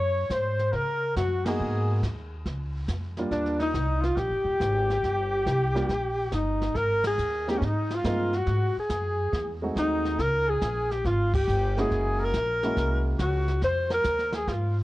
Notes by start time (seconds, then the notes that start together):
Already playing: F#2 C#5
0.30 G#2 C5, kick, snare, hi-hat pedal
0.59 snare
0.72 C#3 A#4, brush sweep, kick, snare
1.16 F#2 F#4, kick, snare, hi-hat pedal
1.45 A#3 B3 D#4 F#4 G#4, snare, ride
1.59 G#2, brush sweep
2.02 D#2, kick, snare, hi-hat pedal
2.45 C#2, brush sweep, kick, snare
2.88 F2, kick, snare, hi-hat pedal
3.17 G3 A#3 D4 F4, snare
3.31 D#2 D4, brush sweep, kick, snare
3.46 snare
3.60 D#4, snare
3.74 C2, kick, snare, hi-hat pedal
4.01 F4, snare
4.06 F4
4.17 A#1 G4, brush sweep, kick, snare
4.30 G1
4.45 D#1
4.60 G#1, kick, snare, hi-hat pedal
4.90 snare
5.03 G1, brush sweep, kick, snare
5.46 C2, kick, snare, hi-hat pedal
5.75 G3 A#3 D4 F4, snare
5.89 A#1, brush sweep, kick, snare
6.32 G1 D#4, kick, snare, hi-hat pedal
6.62 snare
6.75 G#1 A#4, brush sweep, kick, snare
7.04 G#4, snare, ride
7.18 D#2, hi-hat pedal
7.47 G#3 A#3 C4 D#4 G4, snare
7.58 G#2 C#4, brush sweep, kick, snare
7.64 D#4
7.90 F4, snare
7.95 F4
8.04 G2 G#3 A#3 C4 D#4 A#4, kick, snare, hi-hat pedal
8.33 F#4, snare
8.37 F#4
8.47 G#2, brush sweep, kick, snare
8.77 G#4, muted upright bass stroke
8.90 F#2, kick, snare, hi-hat pedal
9.33 E2, brush sweep, kick, snare
9.62 G#3 A3 C4 D#4 F#4
9.76 D#2 D#4, kick, snare, hi-hat pedal
10.05 snare
10.19 C#2 A#4, brush sweep, kick, snare
10.48 G#4
10.62 A#1, kick, snare, hi-hat pedal
10.91 G4, snare
11.05 G#1 F4, brush sweep, kick, snare
11.34 G4, kick, crash
11.48 G1, hi-hat pedal
11.77 G#3 A#3 C#4 E4 F#4 G#4, snare
11.81 G#4
11.91 F#1, brush sweep, kick, snare
12.19 A#4
12.25 A#4
12.33 A#1, kick, snare, hi-hat pedal
12.63 G#3 A#3 C#4 E4 F#4, snare
12.76 C2, brush sweep, kick, snare
13.18 C#2 F#4, kick, snare, hi-hat pedal
13.48 snare
13.62 F2 C5, brush sweep, kick, snare
13.91 A#4, snare
13.95 A#4
14.04 D#2, kick, snare, hi-hat pedal
14.19 snare
14.33 G#4, snare
14.38 G#4
14.48 G#2 F4, brush sweep, kick, snare
14.53 F4